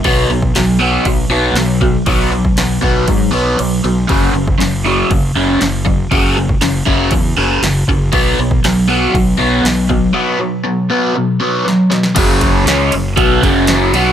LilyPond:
<<
  \new Staff \with { instrumentName = "Overdriven electric guitar" } { \clef bass \time 4/4 \key b \major \tempo 4 = 119 <b, fis b>8 <b, fis>8 <b, fis>8 <b, fis b>8 <b, fis>8 <b, fis b>8 <b, fis>8 <b, fis>8 | <b, fis b>8 <b, fis>8 <b, fis>8 <b, fis b>8 <b, fis>8 <b, fis b>8 <b, fis>8 <b, fis>8 | <fis, cis fis>8 <fis, cis>8 <fis, cis>8 <fis, cis fis>8 <fis, cis>8 <fis, cis fis>8 <fis, cis>8 <fis, cis>8 | <fis, cis fis>8 <fis, cis>8 <fis, cis>8 <fis, cis fis>8 <fis, cis>8 <fis, cis fis>8 <fis, cis>8 <fis, cis>8 |
<b, fis b>8 <b, fis>8 <b, fis>8 <b, fis b>8 <b, fis>8 <b, fis b>8 <b, fis>8 <b, fis>8 | <b, fis b>8 <b, fis>8 <b, fis>8 <b, fis b>8 <b, fis>8 <b, fis b>8 <b, fis>8 <b, fis>8 | <fis, cis fis>4 <cis gis cis'>8 <fis, cis>8 <b, fis b>8 <fis, cis fis>4 <b, fis b>8 | }
  \new Staff \with { instrumentName = "Fingered electric bass" } { \clef bass \time 4/4 \key b \major b,,8 b,,8 b,,4 b,,8 b,,8 b,,4 | b,,4 b,,8 b,,8 gis,8 b,,8 b,,8 b,,8 | fis,,8 fis,,8 fis,,4 fis,,8 fis,,8 fis,,4 | fis,,4 fis,,8 fis,,8 e,8 fis,,8 fis,,8 fis,,8 |
b,,8 b,,8 b,,4 b,,8 b,,8 b,,4 | r1 | fis,,4 cis,8 fis,,8 b,,8 fis,,4 b,,8 | }
  \new DrumStaff \with { instrumentName = "Drums" } \drummode { \time 4/4 <cymc bd>8. bd16 <cymc sn>4 <cymc bd>4 <cymc sn>8 bd8 | <cymc bd>8. bd16 <cymc sn>8 bd8 <cymc bd>4 cymc4 | <cymc bd>8. bd16 <cymc sn>4 <cymc bd>4 <cymc sn>8 bd8 | <cymc bd>8. bd16 <cymc sn>8 bd8 <cymc bd>4 <cymc sn>8 bd8 |
<cymc bd>8. bd16 <cymc sn>4 <cymc bd>4 <cymc sn>8 bd8 | r4 r4 r4 sn8 sn16 sn16 | <cymc bd cymr>8 <bd cymr>8 <cymr sn>8 cymr8 <bd cymr>8 <bd cymr>8 <cymr sn>8 cymr8 | }
>>